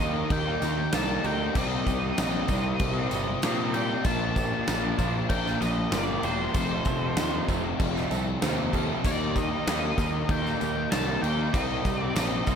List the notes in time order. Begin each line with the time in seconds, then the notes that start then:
Already playing: G4 D#5
0.00 D#2 D#3 G3 A#3 D#4, tambourine
0.15 A#3 D#4, muted overdriven electric guitar stroke
0.30 D#2 D#3 A#3 D#4 G5, kick, crash
0.45 G3 A#3 D#4
0.61 D#2 D#3 G3 A#3 D#4 G4, muted distorted electric guitar stroke, snare, tambourine, crash
0.78 muted overdriven electric guitar stroke, muted distorted electric guitar stroke
0.92 C2 D#3 G3 A#3 D#4 A5, snare, tambourine, crash
1.09 G3 A#3 D#4
1.24 D2 D#3 G3 A#3 D#4 G4 G5, crash
1.39 A#3 D#4
1.55 C2 C3 G3 A#3 C4 D#4 D#5, kick, tambourine, crash
1.86 C2 G4, kick, tambourine, crash
2.02 G3 C4 D#4
2.17 A#1 C3 G3 C4 D#4 D#5, snare, tambourine, crash
2.22 D#4
2.48 C2 C3 G3 A#3, kick, tambourine, crash
2.52 C4 D#4
2.64 G3 C4, muted overdriven electric guitar stroke
2.79 C2 C3 G3 A#3 C4, kick, crash
2.97 G3 C4 D#4
3.11 G1 C3 G3 C4 G4, muted distorted electric guitar stroke, snare, tambourine, crash
3.15 D#4
3.27 muted distorted electric guitar stroke, muted overdriven electric guitar stroke
3.42 A#2 C3 G3 A#3 C4, snare, tambourine, crash
3.47 D#4
3.60 G3 C4 D#4
3.74 C3 G3 C4 D#4 G4 G5, crash
3.90 G3 C4
4.04 A#1 A#2 F3 A#3 A5, kick, tambourine, crash
4.09 D4
4.36 G4, kick, tambourine, crash
4.52 A#3 D4
4.56 F3
4.67 A#1 A#2 F3 A#3 D4, snare, tambourine, crash
4.99 A#1 A#2 F3 A#3 D4, kick, tambourine, crash
5.15 F3 A#3, muted overdriven electric guitar stroke
5.29 A#1 A#2 F3 A#3 G5, kick, crash
5.45 F3 A#3 D4, snare
5.61 A#1 A#2 F3 A#3 G4 D#5, muted distorted electric guitar stroke, snare, tambourine, crash
5.65 D4
5.78 muted distorted electric guitar stroke, muted overdriven electric guitar stroke
5.92 G1 A#2 F3 A#3 D5, snare, tambourine, crash
5.96 D4
6.08 F3 A#3 D4
6.23 E1 A#2 F3 G4 C5, crash
6.27 A#3 D4
6.39 F3 A#3
6.54 F1 F2 C3 D#3 F3 A3, kick, tambourine, crash
6.59 D#4
6.85 F1 A4, kick, tambourine, crash
7.01 C3 D#3 F3 A3 D#4
7.17 D#2 F2 C3 D#3 F3 A3 D#4, snare, tambourine, crash
7.48 F1 F2 C3 D#3 F3 A3 D#4, kick, tambourine, crash
7.64 C3 F3, muted overdriven electric guitar stroke
7.79 F1 F2 C3 F3 C4, kick, tambourine, crash
7.95 C3 F3 A3 D#4, snare
7.99 D#3
8.10 C2 C3 D#3 A3 D#4 A4, muted distorted electric guitar stroke, tambourine, crash
8.26 muted distorted electric guitar stroke, muted overdriven electric guitar stroke
8.41 D#2 F2 C3 D#3 F3 A3 C4 D#4, snare, tambourine, crash
8.56 D#3 A3 D#4
8.72 F2 C3 D#3 F3 A3 A4, kick, crash
8.76 D#4
8.88 C3 F3
9.04 D#2 D#3 G3 A#3 D#4 D5, kick, tambourine, crash
9.36 G4 D#5, kick, tambourine, crash
9.50 G3 A#3 D#4
9.67 D#2 D#3 G3 A#3 D#4, snare, tambourine, crash
9.97 D#2 D#3 G3 A#3 D#4, kick, tambourine, crash
10.12 A#3 D#4, muted overdriven electric guitar stroke
10.29 D#2 D#3 A#3 D#4 G5, kick, crash
10.43 G3 A#3 D#4, snare
10.60 D#2 D#3 G3 A#3 G4, muted distorted electric guitar stroke, tambourine, crash
10.64 D#4
10.76 muted distorted electric guitar stroke, muted overdriven electric guitar stroke
10.91 C2 D#3 G3 A#3 D#4 A5, snare, tambourine, crash
11.08 G3 A#3 D#4
11.22 D#2 D#3 G3 A#3 D#4 G4 G5, crash
11.37 A#3 D#4
11.53 C2 C3 G3 A#3 C4 D#5, kick, tambourine, crash
11.57 D#4
11.85 C2 G4, kick, tambourine, crash
11.99 C4 D#4 D5
12.04 G3
12.15 A#1 C3 G3 C4 D#4 D#5, snare, tambourine, crash
12.19 D#4
12.46 C2 C3 G3 A#3 C4 D#4, kick, tambourine, crash